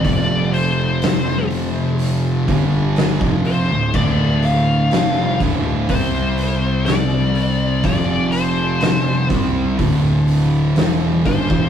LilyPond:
<<
  \new Staff \with { instrumentName = "Lead electric guitar" } { \time 4/4 \key d \minor \tempo 4 = 62 d''8 c''4 r2 c''8 | d''8 f''4 r8 c''4 d''4 | d''8 c''4 r2 c''8 | }
  \new Staff \with { instrumentName = "Distorted electric guitar" } { \clef bass \time 4/4 \key d \minor <f, c f>2~ <f, c f>8 <g, d g>8. <f, c f>8 <d, a,>16 | <d, a, d>4 <f, c f>8 <d, a, d>8 <c g c'>2 | <f, c f>4. <c g c'>8 <d, a, d>4 <e, b, e>8 <g, d>16 <e, b,>16 | }
  \new Staff \with { instrumentName = "Distorted electric guitar" } { \clef bass \time 4/4 \key d \minor <f, c f>2~ <f, c f>8 <g, d g>8. <f, c f>8 <d, a,>16 | <d, a, d>4 <f, c f>8 <d, a, d>8 <c g c'>2 | <f, c f>4. <c g c'>8 <d, a, d>4 <e, b, e>8 <g, d>16 <e, b,>16 | }
  \new Staff \with { instrumentName = "Picked electric bass" } { \clef bass \time 4/4 \key d \minor f,,2~ f,,8 g,,8. f,,8 d,,16 | d,,4 f,,8 d,,8 c,2 | f,,4. c,8 d,,4 e,,8 g,,16 e,,16 | }
  \new DrumStaff \with { instrumentName = "Drums" } \drummode { \time 4/4 <hho bd>8 hho8 <hho sn>8 hho8 hho8 <hho bd>8 <hho sn>16 bd16 hho8 | <cymc bd>8 hho8 <hho sn>8 <hho bd>8 <hho bd>8 hho8 <hho sn>8 hho8 | <hho bd>8 hho8 <hho sn>8 <hho bd>8 <hho bd>8 hho8 <hho sn>8 <hho bd>16 bd16 | }
>>